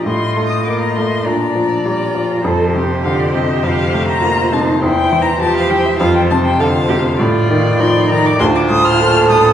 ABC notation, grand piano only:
X:1
M:4/4
L:1/8
Q:1/4=101
K:Fmix
V:1 name="Grand piano" clef=bass
A,, A, B, A, B,, F, G, F, | F,, C, D, C, F,, A, B, C, | =E,, =E, F, E, F,, C, D, C, | A,, E, F, E, D,, A,, B,, A,, |]